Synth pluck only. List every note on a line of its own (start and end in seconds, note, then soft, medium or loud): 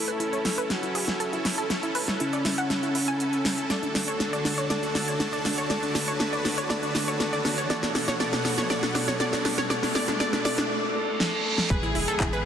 0.08 0.15 B4 medium
0.20 0.27 E4 medium
0.33 0.40 C#5 medium
0.45 0.52 E4 medium
0.58 0.65 B4 medium
0.70 0.77 E4 medium
0.83 0.90 E4 medium
0.95 1.02 G#4 medium
1.08 1.15 E4 medium
1.20 1.27 A4 loud
1.33 1.40 E4 medium
1.45 1.52 E4 medium
1.58 1.65 A4 medium
1.70 1.77 E4 medium
1.83 1.90 E4 medium
1.95 2.02 B4 medium
2.08 2.15 E4 medium
2.20 2.28 E4 medium
2.33 2.40 D5 medium
2.45 2.53 E4 medium
2.58 2.65 F#5 medium
2.70 2.78 E4 medium
2.83 2.90 E4 medium
2.95 3.03 E4 medium
3.08 3.60 G#5 medium
3.70 3.77 D5 medium
3.83 3.90 D4 medium
3.95 4.02 D4 medium
4.08 4.15 C#5 medium
4.20 4.27 D4 medium
4.33 4.40 D5 medium
4.45 4.52 D4 medium
4.58 4.65 C#5 medium
4.70 4.77 D5 medium
4.83 4.90 D4 medium
4.95 5.02 D4 medium
5.08 5.15 C#5 medium
5.20 5.27 D4 medium
5.33 5.40 D5 medium
5.45 5.52 D4 medium
5.58 5.65 C#5 medium
5.70 5.77 D5 medium
5.83 5.90 D4 medium
5.95 6.02 D4 medium
6.08 6.15 C#5 medium
6.20 6.27 D4 medium
6.33 6.40 D5 medium
6.45 6.52 D4 medium
6.58 6.65 C#5 medium
6.70 6.77 D5 loud
6.83 6.90 D4 medium
6.95 7.02 D4 medium
7.08 7.15 C#5 medium
7.20 7.27 D4 medium
7.33 7.40 D5 medium
7.45 7.52 D4 medium
7.58 7.65 C#5 medium
7.70 7.77 D5 medium
7.83 7.90 D4 medium
7.95 8.02 D4 medium
8.08 8.15 C#5 medium
8.20 8.27 D5 loud
8.33 8.40 D4 medium
8.45 8.52 D4 medium
8.58 8.65 C#5 medium
8.70 8.77 D5 medium
8.83 8.90 D4 medium
8.95 9.02 D4 medium
9.08 9.15 C#5 medium
9.20 9.27 D5 loud
9.33 9.40 D4 medium
9.45 9.53 D4 medium
9.58 9.65 C#5 medium
9.70 9.77 D5 medium
9.83 9.90 D4 medium
9.95 10.03 D5 loud
10.08 10.15 D4 medium
10.20 10.28 D5 loud
10.33 10.40 D4 medium
10.45 10.53 D5 medium
10.58 10.65 D4 medium
11.70 11.78 B4 medium
11.83 11.90 E4 medium
11.95 12.03 E4 medium
12.08 12.15 A4 medium
12.20 12.28 E4 medium
12.33 12.40 B4 medium